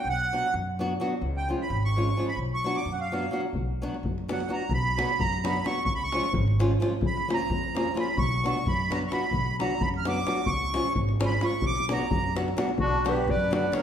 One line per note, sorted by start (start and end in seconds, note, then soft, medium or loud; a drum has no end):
0.05 0.35 B1 medium
0.10 0.54 F#5 loud
0.33 0.45 F#3 medium
0.33 0.46 B3 medium
0.33 0.46 D4 medium
0.33 0.46 F#4 medium
0.54 0.95 F#2 loud
0.79 0.92 F#3 medium
0.79 0.92 B3 medium
0.79 0.92 D4 medium
0.79 0.92 F#4 medium
1.00 1.12 F#3 medium
1.00 1.13 B3 medium
1.00 1.13 D4 medium
1.00 1.13 F#4 medium
1.21 1.51 C#2 loud
1.37 1.48 G5 medium
1.49 1.62 F3 medium
1.49 1.62 G#3 medium
1.49 1.62 C#4 medium
1.49 1.62 F4 medium
1.62 1.83 B5 medium
1.70 2.11 G#1 loud
1.85 2.25 C#6 medium
1.96 2.08 F3 medium
1.96 2.09 G#3 medium
1.96 2.09 C#4 medium
1.96 2.09 F4 medium
2.17 2.29 F3 medium
2.17 2.29 G#3 medium
2.17 2.30 C#4 medium
2.17 2.30 F4 medium
2.28 2.39 B5 medium
2.36 2.67 B1 medium
2.54 2.77 C#6 loud
2.64 2.77 F#3 medium
2.64 2.78 B3 medium
2.64 2.78 D4 medium
2.64 2.78 F#4 medium
2.76 2.93 D6 medium
2.85 3.26 F#2 medium
2.92 3.00 F#5 medium
3.00 3.41 F5 medium
3.12 3.24 F#3 medium
3.12 3.24 B3 medium
3.12 3.24 D4 medium
3.12 3.25 F#4 medium
3.31 3.44 F#3 medium
3.31 3.45 B3 medium
3.31 3.45 D4 medium
3.31 3.45 F#4 medium
3.53 3.83 B1 medium
3.53 davul low medium
3.82 3.94 F#3 medium
3.82 3.94 B3 medium
3.82 3.95 D4 medium
3.82 3.95 F#4 loud
3.94 davul high soft
4.03 4.43 F#2 medium
4.03 davul low medium
4.18 davul high soft
4.28 4.40 F#3 medium
4.28 4.41 B3 medium
4.28 4.41 D4 medium
4.28 4.41 F#4 medium
4.28 4.52 F#5 medium
4.28 davul high medium
4.40 davul high soft
4.48 4.61 F#3 medium
4.48 4.61 B3 medium
4.48 4.61 D4 medium
4.48 4.61 F#4 medium
4.48 4.73 A#5 medium
4.69 4.99 B1 loud
4.69 5.23 B5 medium
4.69 davul low loud
4.97 5.10 F#3 medium
4.97 5.10 B3 medium
4.97 5.10 D4 medium
4.97 5.10 F#4 medium
4.97 davul high medium
5.09 davul high soft
5.19 5.59 F#2 loud
5.19 5.45 A#5 loud
5.19 davul low loud
5.33 davul high soft
5.44 5.56 F#3 medium
5.44 5.56 B3 medium
5.44 5.56 D4 medium
5.44 5.56 F#4 medium
5.44 5.66 B5 medium
5.44 davul high medium
5.56 davul high soft
5.64 5.76 F#3 medium
5.64 5.77 B3 medium
5.64 5.77 D4 medium
5.64 5.77 F#4 medium
5.64 5.83 C#6 loud
5.64 davul high medium
5.85 6.15 C#2 medium
5.85 5.93 C#6 loud
5.85 davul low medium
5.95 6.03 B5 medium
6.03 6.33 C#6 loud
6.12 6.25 F3 medium
6.12 6.25 G#3 medium
6.12 6.26 C#4 medium
6.12 6.26 F4 medium
6.12 davul high medium
6.24 davul high soft
6.33 6.74 G#1 loud
6.33 davul low loud
6.48 davul high soft
6.59 6.71 F3 medium
6.59 6.71 G#3 medium
6.59 6.72 C#4 medium
6.59 6.72 F4 medium
6.59 davul high medium
6.71 davul high soft
6.80 6.92 F3 medium
6.80 6.92 G#3 medium
6.80 6.93 C#4 medium
6.80 6.93 F4 medium
6.80 davul high medium
7.01 7.31 A#1 loud
7.01 davul low loud
7.07 7.32 B5 medium
7.17 davul high soft
7.28 7.41 F3 medium
7.28 7.41 A#3 medium
7.28 7.41 C#4 medium
7.28 7.41 F4 medium
7.28 davul high medium
7.33 7.75 A#5 medium
7.40 davul high soft
7.49 7.90 F2 loud
7.49 davul low medium
7.64 davul high soft
7.75 7.87 F3 medium
7.75 7.87 A#3 medium
7.75 7.87 C#4 medium
7.75 7.88 F4 medium
7.75 7.97 A#5 medium
7.75 davul high medium
7.94 8.07 F3 medium
7.94 8.07 A#3 medium
7.94 8.07 C#4 medium
7.94 8.08 F4 medium
7.94 davul high medium
8.00 8.19 B5 medium
8.07 davul high soft
8.17 8.47 B1 loud
8.17 8.45 C#6 loud
8.17 davul low loud
8.43 8.56 F#3 medium
8.43 8.56 B3 medium
8.43 8.57 D4 medium
8.43 8.57 F#4 medium
8.43 8.68 C#6 medium
8.43 davul high medium
8.57 davul high soft
8.66 9.06 F#2 loud
8.66 8.92 B5 medium
8.66 davul low medium
8.79 davul high soft
8.90 9.02 F#3 medium
8.90 9.02 B3 medium
8.90 9.03 D4 medium
8.90 9.03 F#4 medium
8.90 8.99 A#5 medium
8.90 davul high medium
9.03 davul high soft
9.07 9.13 C#6 medium
9.12 9.23 F#3 medium
9.12 9.23 B3 soft
9.12 9.24 D4 medium
9.12 9.24 F#4 medium
9.12 9.57 B5 medium
9.12 davul high medium
9.31 9.61 B1 medium
9.31 davul low medium
9.59 9.71 F#3 medium
9.59 9.72 B3 medium
9.59 9.72 D4 medium
9.59 9.72 F#4 medium
9.59 9.82 A#5 medium
9.59 davul high medium
9.71 davul high soft
9.81 10.21 F#2 loud
9.81 9.89 B5 loud
9.81 davul low loud
9.94 10.06 F6 medium
9.94 davul high soft
10.05 10.17 F#3 medium
10.05 10.17 B3 medium
10.05 10.18 D4 medium
10.05 10.18 F#4 medium
10.05 10.50 D6 loud
10.05 davul high medium
10.16 davul high soft
10.26 10.38 F#3 medium
10.26 10.38 B3 medium
10.26 10.39 D4 medium
10.26 10.39 F#4 medium
10.26 davul high medium
10.46 10.76 C#2 medium
10.46 10.93 C#6 loud
10.46 davul low loud
10.74 10.87 F3 medium
10.74 10.87 G#3 medium
10.74 10.87 C#4 medium
10.74 10.87 F4 medium
10.74 davul high medium
10.84 davul high soft
10.95 11.36 G#1 loud
10.95 davul low medium
11.09 davul high soft
11.20 11.32 F3 medium
11.20 11.32 G#3 medium
11.20 11.33 C#4 medium
11.20 11.33 F4 medium
11.20 davul high medium
11.26 11.45 B5 medium
11.32 davul high soft
11.41 11.53 F3 medium
11.41 11.53 G#3 medium
11.41 11.54 C#4 medium
11.41 11.54 F4 medium
11.41 davul high medium
11.45 11.65 C#6 medium
11.62 11.93 B1 loud
11.62 davul low loud
11.66 11.93 D6 loud
11.76 davul high soft
11.89 12.02 F#3 medium
11.89 12.03 B3 medium
11.89 12.03 D4 medium
11.89 12.03 F#4 medium
11.89 12.35 A#5 medium
11.89 davul high medium
12.00 davul high soft
12.11 12.51 F#2 medium
12.11 davul low loud
12.24 davul high soft
12.35 12.48 F#3 medium
12.35 12.48 B3 medium
12.35 12.48 D4 medium
12.35 12.48 F#4 medium
12.35 davul high medium
12.48 davul high soft
12.57 12.69 F#3 medium
12.57 12.69 B3 medium
12.57 12.70 D4 medium
12.57 12.70 F#4 medium
12.57 davul high medium
12.69 davul high soft
12.78 13.29 B1 medium
12.78 13.06 D4 loud
12.78 13.11 F#4 loud
12.78 davul low loud
13.05 13.17 D3 medium
13.05 13.18 F#3 medium
13.05 13.18 B3 medium
13.05 13.18 D4 medium
13.05 13.18 F#4 medium
13.05 13.29 G4 medium
13.05 davul high medium
13.09 13.32 B4 loud
13.17 davul high soft
13.28 13.68 F#2 loud
13.28 13.53 B4 medium
13.28 13.54 D5 loud
13.28 davul low loud
13.40 davul high soft
13.51 13.63 D3 medium
13.51 13.64 F#3 medium
13.51 13.64 B3 medium
13.51 13.64 D4 medium
13.51 13.64 F#4 medium
13.51 13.75 D5 loud
13.51 davul high medium
13.55 13.74 B4 medium
13.63 davul high soft
13.72 13.82 D3 medium
13.72 13.82 F#3 medium
13.72 13.82 B3 medium
13.72 13.82 D4 medium
13.72 13.82 F#4 medium
13.72 13.82 C#5 loud
13.72 davul high medium
13.76 13.82 A#4 medium